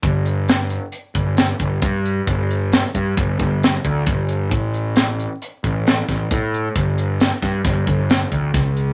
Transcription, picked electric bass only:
0, 0, Header, 1, 2, 480
1, 0, Start_track
1, 0, Tempo, 447761
1, 32, Time_signature, 5, 2, 24, 8
1, 9573, End_track
2, 0, Start_track
2, 0, Title_t, "Picked electric bass"
2, 0, Program_c, 0, 34
2, 34, Note_on_c, 0, 31, 73
2, 824, Note_off_c, 0, 31, 0
2, 1231, Note_on_c, 0, 31, 73
2, 1629, Note_off_c, 0, 31, 0
2, 1715, Note_on_c, 0, 31, 70
2, 1914, Note_off_c, 0, 31, 0
2, 1953, Note_on_c, 0, 43, 79
2, 2351, Note_off_c, 0, 43, 0
2, 2437, Note_on_c, 0, 31, 81
2, 3031, Note_off_c, 0, 31, 0
2, 3163, Note_on_c, 0, 43, 91
2, 3360, Note_off_c, 0, 43, 0
2, 3404, Note_on_c, 0, 31, 90
2, 3600, Note_off_c, 0, 31, 0
2, 3641, Note_on_c, 0, 31, 81
2, 4037, Note_off_c, 0, 31, 0
2, 4123, Note_on_c, 0, 38, 78
2, 4320, Note_off_c, 0, 38, 0
2, 4364, Note_on_c, 0, 31, 76
2, 4841, Note_off_c, 0, 31, 0
2, 4841, Note_on_c, 0, 33, 74
2, 5631, Note_off_c, 0, 33, 0
2, 6045, Note_on_c, 0, 33, 70
2, 6438, Note_off_c, 0, 33, 0
2, 6529, Note_on_c, 0, 33, 78
2, 6723, Note_off_c, 0, 33, 0
2, 6767, Note_on_c, 0, 45, 74
2, 7159, Note_off_c, 0, 45, 0
2, 7242, Note_on_c, 0, 31, 69
2, 7832, Note_off_c, 0, 31, 0
2, 7963, Note_on_c, 0, 43, 80
2, 8158, Note_off_c, 0, 43, 0
2, 8194, Note_on_c, 0, 31, 83
2, 8393, Note_off_c, 0, 31, 0
2, 8440, Note_on_c, 0, 31, 77
2, 8832, Note_off_c, 0, 31, 0
2, 8917, Note_on_c, 0, 38, 72
2, 9113, Note_off_c, 0, 38, 0
2, 9154, Note_on_c, 0, 37, 75
2, 9546, Note_off_c, 0, 37, 0
2, 9573, End_track
0, 0, End_of_file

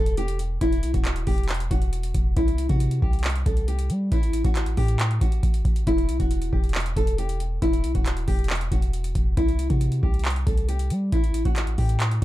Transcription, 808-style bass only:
0, 0, Header, 1, 2, 480
1, 0, Start_track
1, 0, Key_signature, 1, "minor"
1, 0, Tempo, 437956
1, 673, Time_signature, 4, 2, 24, 8
1, 13421, End_track
2, 0, Start_track
2, 0, Title_t, "808-style bass"
2, 0, Program_c, 0, 38
2, 0, Note_on_c, 0, 28, 105
2, 643, Note_off_c, 0, 28, 0
2, 672, Note_on_c, 0, 28, 109
2, 912, Note_on_c, 0, 35, 108
2, 928, Note_off_c, 0, 28, 0
2, 1026, Note_off_c, 0, 35, 0
2, 1032, Note_on_c, 0, 27, 103
2, 1378, Note_off_c, 0, 27, 0
2, 1393, Note_on_c, 0, 28, 109
2, 1854, Note_off_c, 0, 28, 0
2, 1872, Note_on_c, 0, 28, 108
2, 2333, Note_off_c, 0, 28, 0
2, 2352, Note_on_c, 0, 28, 106
2, 2583, Note_off_c, 0, 28, 0
2, 2593, Note_on_c, 0, 36, 109
2, 2938, Note_off_c, 0, 36, 0
2, 2953, Note_on_c, 0, 48, 104
2, 3298, Note_off_c, 0, 48, 0
2, 3313, Note_on_c, 0, 36, 103
2, 3774, Note_off_c, 0, 36, 0
2, 3793, Note_on_c, 0, 36, 112
2, 4273, Note_on_c, 0, 55, 103
2, 4289, Note_off_c, 0, 36, 0
2, 4501, Note_off_c, 0, 55, 0
2, 4513, Note_on_c, 0, 33, 113
2, 4858, Note_off_c, 0, 33, 0
2, 4872, Note_on_c, 0, 33, 109
2, 5218, Note_off_c, 0, 33, 0
2, 5233, Note_on_c, 0, 45, 108
2, 5694, Note_off_c, 0, 45, 0
2, 5713, Note_on_c, 0, 33, 110
2, 5943, Note_off_c, 0, 33, 0
2, 5953, Note_on_c, 0, 33, 107
2, 6183, Note_off_c, 0, 33, 0
2, 6192, Note_on_c, 0, 33, 105
2, 6423, Note_off_c, 0, 33, 0
2, 6433, Note_on_c, 0, 28, 104
2, 6674, Note_on_c, 0, 35, 106
2, 6690, Note_off_c, 0, 28, 0
2, 6787, Note_off_c, 0, 35, 0
2, 6793, Note_on_c, 0, 28, 104
2, 7139, Note_off_c, 0, 28, 0
2, 7154, Note_on_c, 0, 28, 104
2, 7614, Note_off_c, 0, 28, 0
2, 7633, Note_on_c, 0, 28, 107
2, 8324, Note_off_c, 0, 28, 0
2, 8353, Note_on_c, 0, 28, 109
2, 8593, Note_on_c, 0, 35, 103
2, 8609, Note_off_c, 0, 28, 0
2, 8707, Note_off_c, 0, 35, 0
2, 8713, Note_on_c, 0, 27, 103
2, 9058, Note_off_c, 0, 27, 0
2, 9073, Note_on_c, 0, 28, 105
2, 9534, Note_off_c, 0, 28, 0
2, 9553, Note_on_c, 0, 28, 108
2, 10013, Note_off_c, 0, 28, 0
2, 10032, Note_on_c, 0, 28, 105
2, 10263, Note_off_c, 0, 28, 0
2, 10272, Note_on_c, 0, 36, 117
2, 10618, Note_off_c, 0, 36, 0
2, 10632, Note_on_c, 0, 48, 104
2, 10978, Note_off_c, 0, 48, 0
2, 10993, Note_on_c, 0, 36, 105
2, 11454, Note_off_c, 0, 36, 0
2, 11472, Note_on_c, 0, 36, 109
2, 11954, Note_on_c, 0, 55, 100
2, 11970, Note_off_c, 0, 36, 0
2, 12181, Note_off_c, 0, 55, 0
2, 12193, Note_on_c, 0, 33, 109
2, 12538, Note_off_c, 0, 33, 0
2, 12553, Note_on_c, 0, 33, 106
2, 12898, Note_off_c, 0, 33, 0
2, 12914, Note_on_c, 0, 45, 106
2, 13374, Note_off_c, 0, 45, 0
2, 13421, End_track
0, 0, End_of_file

